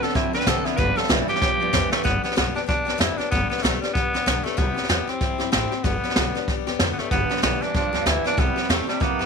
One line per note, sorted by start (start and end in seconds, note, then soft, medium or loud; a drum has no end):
0.02 0.14 D3 medium
0.02 0.15 B3 medium
0.02 0.14 C4 soft
0.02 0.15 D4 medium
0.02 0.16 A4 medium
0.02 0.15 A4 loud
0.02 muted upright bass stroke medium
0.02 snare soft
0.09 snare soft
0.14 0.32 D3 medium
0.14 0.34 F#3 medium
0.14 0.34 C4 medium
0.14 0.33 C4 loud
0.14 0.33 D4 medium
0.14 0.34 E4 loud
0.14 0.32 A4 medium
0.14 kick loud
0.14 snare soft
0.33 0.43 A2 medium
0.33 0.45 D3 medium
0.33 0.46 C4 medium
0.33 0.46 C4 soft
0.33 0.46 D4 medium
0.33 0.47 A4 medium
0.33 0.49 B4 loud
0.33 snare soft
0.40 snare soft
0.46 0.60 C3 medium
0.46 0.65 D3 medium
0.46 0.64 D3 medium
0.46 0.66 F#3 medium
0.46 0.64 B3 medium
0.46 0.66 C4 loud
0.46 0.65 D4 loud
0.46 0.67 A4 medium
0.46 0.64 A4 loud
0.46 kick loud
0.46 snare loud
0.46 hi-hat pedal loud
0.65 0.77 D3 medium
0.65 0.77 B3 medium
0.65 0.78 C4 soft
0.65 0.77 D4 medium
0.65 0.79 E4 loud
0.65 0.78 A4 medium
0.65 muted upright bass stroke medium
0.65 snare soft
0.77 0.91 G1 loud
0.77 0.97 G2 medium
0.77 0.95 G2 medium
0.77 0.97 D3 medium
0.77 0.96 D3 loud
0.77 0.97 G3 loud
0.77 0.96 B3 medium
0.77 0.96 D4 medium
0.77 0.95 G4 medium
0.77 0.99 B4 loud
0.77 kick loud
0.77 snare soft
0.96 1.08 G2 medium
0.96 1.09 D3 loud
0.96 1.08 G3 soft
0.96 1.08 B3 soft
0.96 1.09 D4 medium
0.96 1.09 G4 medium
0.96 1.13 A4 medium
0.96 muted upright bass stroke medium
0.96 snare soft
1.03 snare soft
1.08 1.22 B1 loud
1.08 1.28 G2 medium
1.08 1.27 G2 medium
1.08 1.28 D3 medium
1.08 1.27 E3 medium
1.08 1.29 G3 medium
1.08 1.28 B3 medium
1.08 1.28 D4 medium
1.08 1.29 E4 medium
1.08 1.27 G4 medium
1.08 kick medium
1.08 snare loud
1.08 hi-hat pedal medium
1.28 1.40 G2 medium
1.28 1.40 E3 medium
1.28 1.41 G3 soft
1.28 1.41 B3 soft
1.28 1.42 D4 medium
1.28 1.41 G4 medium
1.28 1.90 G4 loud
1.28 muted upright bass stroke medium
1.28 snare soft
1.35 snare soft
1.41 1.54 B1 medium
1.41 1.58 G2 medium
1.41 1.59 F3 medium
1.41 1.61 G3 medium
1.41 1.61 B3 medium
1.41 1.60 D4 medium
1.41 1.59 G4 medium
1.41 kick loud
1.41 snare medium
1.60 1.69 D2 medium
1.60 1.72 G2 medium
1.60 1.72 F3 medium
1.60 1.72 G3 medium
1.60 1.72 B3 medium
1.60 1.73 D4 medium
1.60 1.73 G4 medium
1.73 1.86 F2 medium
1.73 1.92 G2 medium
1.73 1.90 G2 medium
1.73 1.92 D3 loud
1.73 1.90 E3 medium
1.73 1.92 G3 loud
1.73 1.92 B3 loud
1.73 1.91 D4 loud
1.73 1.90 G4 loud
1.73 kick loud
1.73 snare loud
1.73 hi-hat pedal loud
1.92 2.03 G2 medium
1.92 2.04 E3 medium
1.92 2.03 G3 medium
1.92 2.04 A3 loud
1.92 2.03 B3 medium
1.92 2.04 D4 medium
1.92 2.04 G4 medium
1.92 muted upright bass stroke medium
1.92 snare loud
2.03 2.18 G1 loud
2.03 2.23 G2 medium
2.03 2.23 D3 medium
2.03 2.23 G3 medium
2.03 2.23 B3 medium
2.03 2.22 B3 loud
2.03 2.23 D4 medium
2.03 2.22 G4 loud
2.03 kick loud
2.03 snare soft
2.23 2.35 G3 soft
2.23 2.36 B3 medium
2.23 2.35 B3 soft
2.23 2.36 D4 medium
2.23 2.36 G4 medium
2.23 snare soft
2.31 snare soft
2.35 2.49 B1 loud
2.35 2.55 G2 medium
2.35 2.55 D3 medium
2.35 2.55 G3 medium
2.35 2.55 B3 medium
2.35 2.54 B3 medium
2.35 2.54 D4 medium
2.35 2.53 G4 medium
2.35 snare loud
2.35 hi-hat pedal medium
2.54 2.65 G3 soft
2.54 2.66 B3 soft
2.54 2.67 D4 soft
2.54 2.62 D4 loud
2.54 2.68 G4 medium
2.54 muted upright bass stroke medium
2.54 snare soft
2.66 2.81 B1 medium
2.66 2.86 G3 medium
2.66 2.86 B3 medium
2.66 2.85 D4 medium
2.66 3.02 D4 loud
2.66 2.84 G4 medium
2.66 kick loud
2.66 snare soft
2.85 2.96 D2 medium
2.85 2.97 G3 soft
2.85 2.98 B3 soft
2.85 2.98 D4 medium
2.85 2.98 G4 medium
2.85 snare soft
2.98 3.12 F2 medium
2.98 3.18 G2 medium
2.98 3.18 D3 medium
2.98 3.18 G3 medium
2.98 3.18 B3 medium
2.98 3.18 D4 medium
2.98 3.20 E4 loud
2.98 3.17 G4 medium
2.98 snare loud
2.98 hi-hat pedal loud
3.18 3.31 G3 soft
3.18 3.31 B3 soft
3.18 3.31 D4 loud
3.18 3.32 D4 medium
3.18 3.31 G4 medium
3.18 muted upright bass stroke medium
3.18 snare soft
3.31 3.45 G1 loud
3.31 3.50 G2 medium
3.31 3.50 D3 medium
3.31 3.50 G3 medium
3.31 3.49 B3 loud
3.31 3.50 B3 medium
3.31 3.50 D4 medium
3.31 3.49 G4 loud
3.31 kick loud
3.31 snare soft
3.50 3.62 G3 soft
3.50 3.64 B3 medium
3.50 3.63 B3 medium
3.50 3.63 D4 soft
3.50 3.63 G4 medium
3.50 muted upright bass stroke medium
3.50 snare soft
3.58 snare soft
3.63 3.76 B1 medium
3.63 3.82 G2 medium
3.63 3.82 D3 medium
3.63 3.82 G3 medium
3.63 3.81 A3 medium
3.63 3.82 B3 medium
3.63 3.82 D4 medium
3.63 3.81 G4 loud
3.63 snare loud
3.63 hi-hat pedal medium
3.81 3.93 G3 medium
3.81 3.94 G3 soft
3.81 3.95 B3 soft
3.81 3.96 D4 medium
3.81 3.95 G4 soft
3.81 snare soft
3.94 4.08 B1 medium
3.94 4.14 G3 medium
3.94 4.46 B3 loud
3.94 4.14 B3 medium
3.94 4.13 D4 medium
3.94 4.12 G4 medium
3.94 kick loud
3.94 snare soft
4.13 4.22 D2 medium
4.13 4.25 G3 medium
4.13 4.26 B3 medium
4.13 4.26 D4 medium
4.13 4.26 G4 medium
4.13 snare soft
4.26 4.39 B1 medium
4.26 4.45 G2 medium
4.26 4.45 D3 medium
4.26 4.45 G3 medium
4.26 4.44 B3 medium
4.26 4.43 D4 medium
4.26 4.42 G4 medium
4.26 snare loud
4.26 hi-hat pedal loud
4.44 4.56 G3 soft
4.44 4.60 A3 medium
4.44 4.57 B3 medium
4.44 4.57 D4 medium
4.44 4.57 G4 medium
4.44 snare soft
4.57 4.71 C2 loud
4.57 4.76 C3 medium
4.57 4.76 G3 medium
4.57 4.89 B3 loud
4.57 4.76 C4 medium
4.57 4.75 E4 medium
4.57 4.73 G4 medium
4.57 kick loud
4.57 snare soft
4.74 4.88 C4 soft
4.74 4.89 E4 soft
4.74 4.88 G4 medium
4.74 snare soft
4.83 snare soft
4.89 5.02 E2 loud
4.89 5.08 C3 medium
4.89 5.09 G3 medium
4.89 5.11 B3 medium
4.89 5.08 C4 medium
4.89 5.08 E4 medium
4.89 5.06 G4 medium
4.89 snare loud
4.89 hi-hat pedal medium
5.07 5.20 C4 soft
5.07 5.52 C4 loud
5.07 5.21 E4 soft
5.07 5.21 G4 medium
5.07 muted upright bass stroke medium
5.07 snare soft
5.21 5.34 E2 medium
5.21 5.40 G3 medium
5.21 5.40 C4 medium
5.21 5.38 E4 medium
5.21 5.37 G4 medium
5.21 kick loud
5.21 snare soft
5.38 5.49 G2 medium
5.38 5.52 C4 medium
5.38 5.52 E4 medium
5.38 5.52 G4 medium
5.38 snare soft
5.52 5.66 A1 medium
5.52 5.71 C3 medium
5.52 5.71 G3 medium
5.52 5.86 C4 medium
5.52 5.72 C4 medium
5.52 5.72 E4 medium
5.52 5.70 G4 medium
5.52 snare loud
5.52 hi-hat pedal loud
5.72 5.85 C4 soft
5.72 5.85 E4 medium
5.72 5.84 G4 medium
5.72 snare soft
5.84 5.97 G1 medium
5.84 6.03 G2 medium
5.84 6.04 D3 medium
5.84 6.04 G3 medium
5.84 6.53 B3 medium
5.84 6.04 B3 medium
5.84 6.04 D4 medium
5.84 6.03 G4 medium
5.84 kick loud
5.84 snare soft
6.03 6.16 G3 soft
6.03 6.16 B3 soft
6.03 6.17 D4 medium
6.03 6.16 G4 soft
6.03 muted upright bass stroke medium
6.03 snare soft
6.10 snare soft
6.16 6.29 B1 loud
6.16 6.35 G2 medium
6.16 6.35 D3 medium
6.16 6.35 G3 medium
6.16 6.35 B3 medium
6.16 6.34 D4 medium
6.16 6.33 G4 loud
6.16 snare loud
6.16 hi-hat pedal medium
6.35 6.47 G3 medium
6.35 6.48 B3 soft
6.35 6.48 D4 medium
6.35 6.48 G4 medium
6.35 snare soft
6.48 6.60 B1 medium
6.48 6.67 G3 medium
6.48 6.67 B3 medium
6.48 6.67 D4 medium
6.48 6.66 G4 medium
6.48 kick loud
6.48 snare soft
6.66 6.75 D2 medium
6.66 6.79 G3 soft
6.66 6.80 B3 medium
6.66 6.80 D4 medium
6.66 6.79 G4 medium
6.66 snare soft
6.79 6.92 F2 medium
6.79 6.98 G2 medium
6.79 6.99 D3 medium
6.79 6.99 G3 medium
6.79 6.99 B3 loud
6.79 6.99 D4 medium
6.79 6.98 G4 loud
6.79 snare loud
6.79 hi-hat pedal medium
6.93 7.01 B3 medium
6.98 7.11 G3 soft
6.98 7.11 A3 medium
6.98 7.11 B3 medium
6.98 7.12 D4 medium
6.98 7.11 G4 medium
6.98 muted upright bass stroke medium
6.98 snare soft
7.11 7.24 G1 loud
7.11 7.28 G2 loud
7.11 7.30 G2 medium
7.11 7.28 D3 loud
7.11 7.30 D3 medium
7.11 7.30 G3 medium
7.11 7.40 B3 loud
7.11 7.30 B3 medium
7.11 7.29 D4 medium
7.11 7.28 G4 medium
7.11 kick loud
7.11 snare soft
7.29 7.41 G2 medium
7.29 7.42 D3 medium
7.29 7.42 G3 soft
7.29 7.42 B3 soft
7.29 7.43 D4 soft
7.29 7.42 G4 medium
7.29 muted upright bass stroke medium
7.29 snare soft
7.37 snare soft
7.42 7.55 B1 medium
7.42 7.61 G2 medium
7.42 7.59 G2 medium
7.42 7.61 D3 medium
7.42 7.60 E3 medium
7.42 7.62 G3 medium
7.42 7.61 B3 medium
7.42 7.64 B3 medium
7.42 7.61 D4 medium
7.42 7.60 G4 medium
7.42 snare loud
7.42 hi-hat pedal medium
7.61 7.73 G2 medium
7.61 7.73 E3 medium
7.61 7.73 G3 soft
7.61 7.74 B3 soft
7.61 7.74 D4 soft
7.61 7.75 D4 medium
7.61 7.74 G4 soft
7.61 muted upright bass stroke medium
7.61 snare soft
7.74 7.87 B1 medium
7.74 7.91 G2 medium
7.74 7.91 F3 medium
7.74 7.93 G3 medium
7.74 7.93 B3 medium
7.74 7.93 D4 medium
7.74 8.09 D4 loud
7.74 7.91 G4 medium
7.74 kick loud
7.74 snare soft
7.93 8.01 D2 medium
7.93 8.05 G2 medium
7.93 8.05 F3 medium
7.93 8.05 G3 medium
7.93 8.06 B3 medium
7.93 8.06 D4 medium
7.93 8.06 G4 medium
7.93 snare soft
8.05 8.18 D2 medium
8.05 8.25 G2 medium
8.05 8.23 G2 medium
8.05 8.25 D3 medium
8.05 8.23 E3 medium
8.05 8.25 G3 medium
8.05 8.24 B3 medium
8.05 8.24 D4 medium
8.05 8.25 E4 loud
8.05 8.23 G4 medium
8.05 snare loud
8.05 hi-hat pedal medium
8.24 8.36 G2 medium
8.24 8.37 E3 loud
8.24 8.37 G3 soft
8.24 8.38 B3 medium
8.24 8.38 D4 soft
8.24 8.42 D4 loud
8.24 8.37 G4 medium
8.24 muted upright bass stroke medium
8.24 snare soft
8.37 8.50 C2 medium
8.37 8.56 C3 medium
8.37 8.55 C3 medium
8.37 8.56 G3 medium
8.37 8.55 G3 medium
8.37 8.70 B3 loud
8.37 8.57 C4 medium
8.37 8.55 E4 medium
8.37 8.55 G4 medium
8.37 kick loud
8.37 snare soft
8.56 8.68 C3 medium
8.56 8.68 G3 medium
8.56 8.69 C4 soft
8.56 8.69 E4 medium
8.56 8.69 G4 medium
8.56 snare soft
8.63 snare soft
8.69 8.82 E2 medium
8.69 8.86 C3 medium
8.69 8.88 C3 medium
8.69 8.88 G3 medium
8.69 8.86 A3 medium
8.69 8.88 A3 medium
8.69 8.88 C4 medium
8.69 8.87 E4 medium
8.69 8.86 G4 loud
8.69 snare loud
8.69 hi-hat pedal medium
8.87 8.99 C3 medium
8.87 9.04 G3 medium
8.87 9.00 A3 medium
8.87 9.00 C4 soft
8.87 9.01 E4 medium
8.87 9.00 G4 medium
8.87 muted upright bass stroke medium
8.87 snare soft
9.00 9.13 E2 medium
9.00 9.18 C3 medium
9.00 9.19 G3 medium
9.00 9.18 A#3 loud
9.00 9.26 B3 loud
9.00 9.20 C4 medium
9.00 9.19 E4 medium
9.00 9.18 G4 medium
9.00 kick loud
9.00 snare soft
9.19 9.26 G2 medium
9.19 9.26 C3 medium
9.19 9.26 A#3 medium
9.19 9.26 C4 soft
9.19 9.26 E4 medium
9.19 9.26 G4 medium
9.19 snare soft